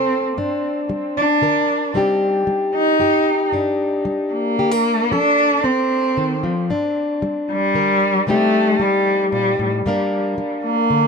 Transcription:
0.00 0.32 C3 soft
0.00 0.24 C4 medium
0.00 0.34 A4 medium
0.37 0.85 G2 medium
0.37 1.96 D4 soft
0.89 1.37 G3 soft
1.17 1.92 D4 medium
1.42 1.90 D3 medium
1.42 1.92 A#4 medium
1.94 2.42 C3 medium
1.94 2.47 G3 soft
1.94 3.50 C4 medium
1.94 3.51 D#4 soft
1.94 2.99 G4 medium
2.47 2.95 G3 medium
2.74 3.50 D#4 medium
2.99 3.48 G2 medium
2.99 4.58 G4 medium
3.52 4.00 G2 medium
3.52 5.12 D4 medium
4.05 4.53 G3 medium
4.33 5.12 A#3 medium
4.58 5.06 D3 medium
4.58 4.72 G4 medium
4.72 5.11 A#4 soft
5.11 5.59 F3 medium
5.11 5.65 D4 medium
5.11 6.67 A4 medium
5.64 6.43 C4 medium
5.64 6.12 C4 medium
6.17 6.43 D#3 medium
6.43 6.70 F3 medium
6.70 7.17 G2 medium
6.70 8.28 D4 medium
7.22 7.70 G3 medium
7.51 8.24 G3 medium
7.74 8.22 D3 medium
7.74 8.25 A#4 medium
8.27 8.75 C3 medium
8.27 8.79 G3 medium
8.27 8.82 A3 medium
8.27 9.83 C4 medium
8.27 9.83 D#4 medium
8.27 9.86 G4 medium
8.79 9.27 G3 medium
8.79 9.31 G3 medium
9.32 9.59 A#2 medium
9.32 9.69 G3 medium
9.59 9.85 A2 medium
9.86 10.33 G2 medium
9.86 10.37 G3 medium
9.86 11.07 A#3 medium
9.86 11.07 D4 medium
9.86 11.07 A#4 medium
10.38 10.85 G3 medium
10.64 11.07 A#3 medium
10.90 11.07 D3 medium

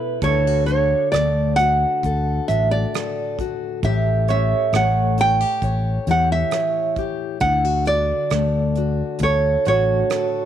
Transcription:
0.00 0.17 B2 medium
0.00 0.17 E3 medium
0.00 0.18 A3 medium
0.00 0.18 D4 soft
0.00 0.23 E4 medium
0.00 0.64 B4 medium
0.22 0.93 D2 medium
0.22 3.85 D3 medium
0.22 0.47 E4 soft
0.22 1.37 A4 medium
0.22 0.65 C#5 medium
0.22 kick medium
0.22 closed hi-hat medium
0.47 1.59 F#4 soft
0.66 1.11 C#5 medium
0.66 closed hi-hat soft
0.71 3.80 D4 soft
1.12 1.84 D2 medium
1.12 3.88 A3 medium
1.12 1.56 D5 medium
1.12 cross-stick medium
1.12 closed hi-hat medium
1.56 2.49 F#4 medium
1.56 2.48 F#5 medium
1.56 closed hi-hat soft
2.03 2.39 D2 medium
2.03 2.95 A4 medium
2.03 kick medium
2.03 closed hi-hat medium
2.48 2.84 A1 medium
2.48 3.83 A2 medium
2.48 3.39 F#4 medium
2.48 2.71 E5 medium
2.48 closed hi-hat medium
2.71 3.35 D5 medium
2.94 5.63 A4 medium
2.94 cross-stick medium
2.94 closed hi-hat medium
3.39 3.79 F#4 medium
3.39 kick medium
3.39 closed hi-hat soft
3.83 4.53 A1 medium
3.83 7.42 A2 medium
3.83 5.17 G4 medium
3.83 4.29 E5 medium
3.83 kick medium
3.83 closed hi-hat medium
4.28 7.45 C#4 soft
4.28 5.42 C#5 medium
4.28 4.75 E5 medium
4.28 closed hi-hat soft
4.73 5.43 A1 medium
4.73 8.24 A3 medium
4.73 5.20 F#5 medium
4.73 cross-stick medium
4.73 closed hi-hat medium
5.18 5.41 E4 medium
5.18 6.10 G5 loud
5.18 closed hi-hat medium
5.41 6.07 G4 soft
5.62 5.97 A1 medium
5.62 6.53 C#5 medium
5.62 kick medium
5.62 closed hi-hat medium
6.07 6.42 E2 medium
6.07 7.37 E3 medium
6.07 6.97 G4 medium
6.07 6.30 F#5 medium
6.07 closed hi-hat soft
6.32 6.94 E5 medium
6.51 7.45 C#5 medium
6.51 cross-stick medium
6.51 closed hi-hat medium
6.96 7.37 G4 medium
6.96 kick medium
6.96 closed hi-hat soft
7.40 8.11 D2 medium
7.40 10.45 D3 medium
7.40 7.65 E4 medium
7.40 7.87 F#5 medium
7.40 kick medium
7.40 closed hi-hat medium
7.65 8.76 F#4 medium
7.85 10.45 D4 medium
7.85 9.17 D5 medium
7.85 closed hi-hat soft
8.30 9.01 D2 medium
8.30 10.45 A3 medium
8.30 cross-stick medium
8.30 closed hi-hat medium
8.76 9.66 F#4 medium
8.76 closed hi-hat soft
9.19 9.55 D2 medium
9.19 kick medium
9.19 closed hi-hat medium
9.23 10.12 A4 medium
9.23 9.67 C#5 medium
9.65 10.01 A1 medium
9.65 10.45 A2 medium
9.65 10.45 F#4 medium
9.65 10.45 C#5 medium
9.65 closed hi-hat soft
10.10 10.45 A4 medium
10.10 cross-stick medium
10.10 closed hi-hat medium

